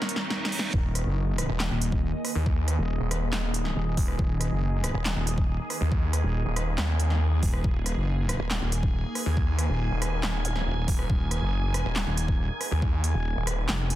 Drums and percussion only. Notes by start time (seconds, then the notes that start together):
0.02 snare
0.09 closed hi-hat
0.16 snare
0.30 snare
0.45 snare
0.52 open hi-hat
0.59 snare
0.74 kick
0.95 cross-stick, closed hi-hat
1.38 cross-stick, closed hi-hat
1.60 snare, clap
1.81 closed hi-hat
1.92 kick
2.25 cross-stick, open hi-hat
2.46 kick
2.68 cross-stick, closed hi-hat
3.11 cross-stick, closed hi-hat
3.33 cross-stick, snare, clap
3.54 closed hi-hat
3.65 snare
3.97 kick, open hi-hat
4.08 cross-stick
4.19 kick
4.41 cross-stick, closed hi-hat
4.84 cross-stick, closed hi-hat
5.05 snare, clap
5.27 closed hi-hat
5.38 kick
5.70 cross-stick, open hi-hat
5.92 kick
6.13 cross-stick, closed hi-hat
6.56 cross-stick, closed hi-hat
6.78 cross-stick, snare, clap
7.00 closed hi-hat
7.10 snare
7.43 kick, open hi-hat
7.53 cross-stick
7.64 kick
7.86 cross-stick, closed hi-hat
8.29 cross-stick, closed hi-hat
8.51 snare, clap
8.72 closed hi-hat
8.83 kick
9.15 cross-stick, open hi-hat
9.37 kick
9.59 cross-stick, closed hi-hat
10.02 cross-stick, closed hi-hat
10.23 cross-stick, snare, clap
10.45 closed hi-hat
10.56 snare
10.88 kick, open hi-hat
10.99 cross-stick
11.10 kick
11.31 cross-stick, closed hi-hat
11.74 cross-stick, closed hi-hat
11.96 snare, clap
12.17 closed hi-hat
12.28 kick
12.61 cross-stick, open hi-hat
12.82 kick
13.04 closed hi-hat
13.47 cross-stick, closed hi-hat
13.69 cross-stick, snare, clap
13.90 closed hi-hat